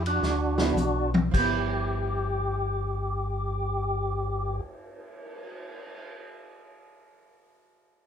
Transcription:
Already playing: F2
0.06 D4 F#4, ride
0.21 D2, snare
0.58 F3 B3 E4, snare
0.75 B1, hi-hat pedal, high tom
1.14 high tom
1.31 G1 F3 G4, kick, crash
1.38 B3
1.43 E4
1.75 cymbal swell

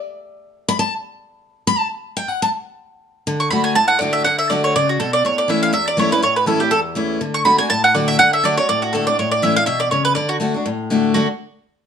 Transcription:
0.69 B5
0.79 A5
1.67 B5
1.78 A5
2.17 G5
2.28 F#5
2.42 A5
3.27 D3
3.40 C#6
3.50 D3 A3 D4 F#4 B5
3.64 G#5
3.75 A2 A5
3.88 F#5
3.99 D3 A3 D4 F#4 D5
4.13 E5
4.24 D3 F#5
4.39 E5
4.50 D3 A3 D4 F#4 D5
4.64 C#5
4.76 C#3 D5
4.89 F#4
5.00 B2 A4
5.13 D5
5.25 A2 C#5
5.38 D5
5.48 E3 A3 C#4 E4 E5
5.63 F5
5.73 E2 E5
5.88 D5
5.97 E3 A3 C#4 E4 C#5
6.11 C#4 E4 B4
6.22 A2 C#5
6.36 B4
6.46 E3 A3 C#4 E4 A4
6.60 C#4 E4 G4
6.71 E2 A4
6.95 E3 A3 C#4 E4
7.21 D3
7.34 C#6
7.45 D3 A3 D4 F#4 B5
7.58 D4 F#4 G#5
7.70 A2 A5
7.84 F#5
7.95 D3 A3 D4 F#4 D5
8.08 E5
8.19 D3 F#5
8.33 E5
8.44 D3 A3 D4 F#4 D5
8.57 D4 F#4 C#5
8.69 A2 D5
8.82 F#4
8.93 D3 A3 D4 F#4 A4
9.07 D4 F#4 D5
9.19 A2 C#5
9.31 D5
9.42 E3 A3 C#4 E4 E5
9.56 C#4 E4 F5
9.66 B2 E5
9.80 D5
9.91 C#3 C#5
10.05 B4
10.15 D3 D5
10.29 F#4
10.40 D3 A3 D4 F#4
10.54 D4 F#4
10.66 A2
10.90 D3 A3 D4 F#4
11.14 D3 A3 D4 F#4

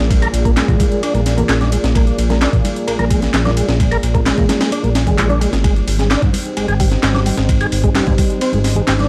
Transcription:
Already playing: A#3 F4 G#4 D5, downlifter
0.00 A#1
0.11 kick, closed hi-hat, ride, high conga
0.22 A#4, closed hi-hat, ride
0.33 A#1, closed hi-hat, ride
0.45 A#3, kick, closed hi-hat, high conga
0.57 G#3, snare, clap, closed hi-hat, ride
0.68 A#2, kick, closed hi-hat, low conga
0.80 kick, closed hi-hat, ride, high conga
0.92 closed hi-hat
1.03 D4, closed hi-hat, ride
1.14 A#1 A#3, closed hi-hat, high conga
1.26 snare, closed hi-hat, ride
1.37 A#3, closed hi-hat, low conga
1.49 A#1 G#4, snare, clap, closed hi-hat, ride
1.61 D4, snare, closed hi-hat, high conga
1.72 G#3, closed hi-hat, ride
1.84 A#1, snare, closed hi-hat
1.95 A#3, kick, closed hi-hat, ride, high conga
2.07 closed hi-hat
2.18 A#1, closed hi-hat, ride
2.30 A#3, snare, closed hi-hat, high conga
2.41 D4, snare, clap, closed hi-hat, ride
2.53 A#2, kick, closed hi-hat, low conga
2.64 closed hi-hat, ride, high conga
2.76 closed hi-hat
2.87 A#1 A#3, closed hi-hat, ride
2.99 A#1 A#4, closed hi-hat, high conga
3.10 G#3, kick, closed hi-hat, ride
3.22 snare, closed hi-hat
3.34 A#1, snare, clap, closed hi-hat, ride
3.45 D4, snare, closed hi-hat, high conga
3.57 G#3, closed hi-hat, ride
3.69 A#1, snare, closed hi-hat
3.80 kick, closed hi-hat, ride, high conga
3.91 A#4, closed hi-hat, ride
4.03 A#1, closed hi-hat, ride
4.14 A#3, kick, closed hi-hat, high conga
4.26 G#3, snare, clap, closed hi-hat, ride
4.38 A#2, kick, closed hi-hat, low conga
4.49 snare, closed hi-hat, ride, high conga
4.61 snare, closed hi-hat, ride
4.72 D4, closed hi-hat, ride
4.83 A#1 A#3, closed hi-hat, high conga
4.95 snare, closed hi-hat, ride
5.07 G#3, kick, closed hi-hat, low conga
5.18 A#1 G#3, clap, closed hi-hat, ride
5.29 D4, closed hi-hat, high conga
5.41 G#3, closed hi-hat, ride
5.53 G#1, snare, closed hi-hat
5.64 G#3 C4 D#4 G4 C5, kick, closed hi-hat, ride, high conga
5.76 closed hi-hat
5.87 G#1, open hi-hat, ride
5.98 G#3, snare, closed hi-hat, high conga
6.11 D4, snare, clap, closed hi-hat, ride
6.22 G#2, kick, closed hi-hat, low conga
6.33 open hi-hat, ride, high conga
6.45 closed hi-hat
6.57 G#1 G#3, closed hi-hat, ride
6.68 G#1 G#4, closed hi-hat, high conga
6.80 G3, kick, open hi-hat, ride
6.92 snare, closed hi-hat
7.03 G#1, snare, clap, closed hi-hat, ride
7.14 D4, snare, closed hi-hat, high conga
7.26 G3, open hi-hat, ride
7.38 G#1, snare
7.49 kick, closed hi-hat, ride, high conga
7.61 G#4, closed hi-hat, ride
7.72 G#1, open hi-hat, ride
7.83 G#3, kick, closed hi-hat, high conga
7.95 G3, snare, clap, closed hi-hat, ride
8.06 G#2, kick, closed hi-hat, low conga
8.18 kick, open hi-hat, ride, high conga
8.30 closed hi-hat
8.41 C4, closed hi-hat, ride
8.52 G#1 G#3, closed hi-hat, high conga
8.64 snare, open hi-hat, ride
8.75 G#3, closed hi-hat, low conga
8.87 G#1 G4, snare, clap, closed hi-hat, ride
8.99 D4, snare, closed hi-hat, high conga

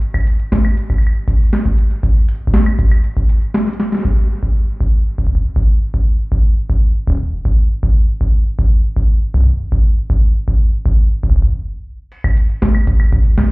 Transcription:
0.02 closed hi-hat
0.14 kick, closed hi-hat, claves
0.17 closed hi-hat
0.21 closed hi-hat
0.24 closed hi-hat
0.27 closed hi-hat
0.40 closed hi-hat
0.52 kick, snare, closed hi-hat
0.65 closed hi-hat, claves
0.77 closed hi-hat
0.90 kick, closed hi-hat, claves
0.98 claves
1.02 closed hi-hat
1.07 claves
1.15 closed hi-hat
1.28 kick, closed hi-hat
1.40 closed hi-hat
1.43 closed hi-hat
1.47 closed hi-hat
1.50 snare, closed hi-hat
1.53 closed hi-hat
1.59 closed hi-hat
1.62 kick, closed hi-hat
1.65 closed hi-hat
1.78 closed hi-hat
1.91 closed hi-hat
2.03 kick, closed hi-hat
2.16 closed hi-hat
2.29 closed hi-hat
2.35 closed hi-hat
2.47 kick
2.54 snare, closed hi-hat
2.66 closed hi-hat, claves
2.79 kick, closed hi-hat
2.92 closed hi-hat, claves
3.04 closed hi-hat
3.17 kick, closed hi-hat
3.29 closed hi-hat
3.42 closed hi-hat
3.54 snare, closed hi-hat
3.67 snare, closed hi-hat
3.70 closed hi-hat
3.72 closed hi-hat
3.75 closed hi-hat
3.80 snare
3.92 snare, closed hi-hat
3.95 snare
3.97 snare
4.00 snare
4.02 kick, snare
4.43 kick
4.81 kick
5.18 kick
5.27 kick
5.35 kick
5.56 kick
5.94 kick
6.32 kick
6.70 kick
7.07 kick
7.10 kick
7.12 kick
7.15 kick
7.17 kick
7.45 kick
7.83 kick
8.21 kick
8.59 kick
8.96 kick
9.34 kick
9.37 kick
9.41 kick
9.44 kick
9.72 kick
10.10 kick
10.48 kick
10.86 kick
11.23 kick
11.30 kick
11.36 kick
11.42 kick
12.12 closed hi-hat, crash
12.24 kick, closed hi-hat, claves
12.37 closed hi-hat
12.49 closed hi-hat
12.62 kick, snare, closed hi-hat
12.75 closed hi-hat, claves
12.87 kick, closed hi-hat
13.00 closed hi-hat, claves
13.12 kick, closed hi-hat
13.25 closed hi-hat
13.38 kick, snare, closed hi-hat

